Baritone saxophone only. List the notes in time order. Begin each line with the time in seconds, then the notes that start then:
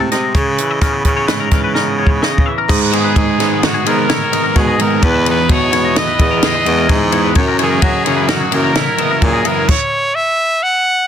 0.11 C3
0.34 C#3
0.81 C#3
1.05 C#3
1.51 C#3
2.69 G#2
3.16 G#2
3.39 G#2
3.87 G#2
4.56 B2
5.02 E2
5.50 B2
6.19 E2
6.66 E2
6.90 G#2
7.36 F#2
7.82 F#3
8.06 F#2
8.53 F#2
9.22 A#2